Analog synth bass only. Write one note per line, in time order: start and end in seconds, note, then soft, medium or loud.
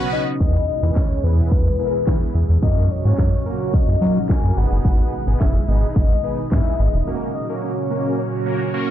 0.40 0.58 E2 loud
0.83 0.91 E2 loud
0.96 1.14 D#2 medium
1.24 1.41 E2 medium
1.51 1.69 E2 medium
2.07 2.16 E3 loud
2.35 2.44 E2 medium
2.50 2.58 E2 loud
2.62 2.89 F#2 loud
3.05 3.13 G#2 medium
3.18 3.36 F#2 medium
3.88 3.97 F#2 loud
4.01 4.19 F#3 loud
4.44 4.52 F#2 medium
4.57 4.66 G#1 loud
4.72 4.80 F#1 loud
4.85 5.02 G#1 loud
5.27 5.36 G#1 medium
5.41 5.58 F#1 medium
5.68 5.86 G#1 medium
5.96 6.14 G#1 loud
6.52 6.61 G#2 loud
6.79 6.89 G#1 loud
6.94 7.02 E1 medium